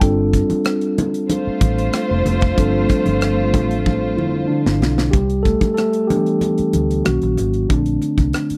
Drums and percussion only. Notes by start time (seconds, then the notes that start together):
0.01 kick, closed hi-hat, muted conga
0.33 kick, closed hi-hat, muted conga
0.50 closed hi-hat, high conga
0.65 cross-stick, closed hi-hat
0.81 closed hi-hat
0.98 closed hi-hat, muted conga, high conga, low conga
1.14 closed hi-hat
1.30 closed hi-hat, muted conga, high conga
1.61 kick, closed hi-hat, muted conga, high conga
1.78 closed hi-hat
1.93 cross-stick, closed hi-hat, muted conga
2.26 closed hi-hat, muted conga, high conga, low conga
2.41 kick, closed hi-hat
2.58 kick, closed hi-hat, muted conga
2.89 kick, cross-stick, closed hi-hat, muted conga
3.06 closed hi-hat, high conga
3.21 cross-stick, closed hi-hat
3.54 kick, closed hi-hat, muted conga, high conga, low conga
3.71 closed hi-hat
3.86 kick, high conga
4.18 muted conga, high conga
4.66 snare
4.82 snare, muted conga, high conga, low conga
4.98 snare
5.13 kick, closed hi-hat, muted conga, low conga
5.30 closed hi-hat
5.45 kick, cross-stick, closed hi-hat, muted conga
5.61 kick, closed hi-hat, high conga
5.77 cross-stick, closed hi-hat, muted conga
5.93 closed hi-hat
6.10 closed hi-hat, muted conga, high conga, low conga
6.26 closed hi-hat
6.41 closed hi-hat, muted conga, high conga
6.58 closed hi-hat
6.73 closed hi-hat, muted conga, high conga
6.91 closed hi-hat
7.05 cross-stick, closed hi-hat, muted conga
7.22 closed hi-hat
7.37 closed hi-hat, muted conga, low conga
7.53 closed hi-hat
7.70 kick, closed hi-hat, low conga
7.86 closed hi-hat
8.02 closed hi-hat, muted conga
8.18 kick, closed hi-hat, high conga
8.33 cross-stick, closed hi-hat, muted conga
8.50 closed hi-hat